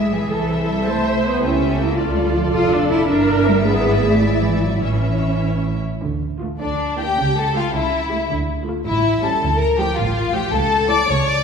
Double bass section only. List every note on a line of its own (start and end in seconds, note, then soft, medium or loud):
0.00 0.33 B1 soft
0.33 1.41 C2 soft
1.43 1.94 C#2 soft
1.98 2.54 D2 medium
2.54 3.09 F1 medium
3.10 3.67 G1 medium
3.67 4.84 G#1 medium
4.84 5.81 A1 soft
6.03 6.49 D2 medium
6.61 7.07 D2 medium
7.19 7.64 C#2 medium
7.75 8.20 C#2 medium
8.31 8.75 D2 medium
8.88 9.31 A1 medium
9.43 9.87 D2 medium
9.99 10.42 A1 medium
10.54 10.98 C#2 medium
11.10 11.44 C#2 medium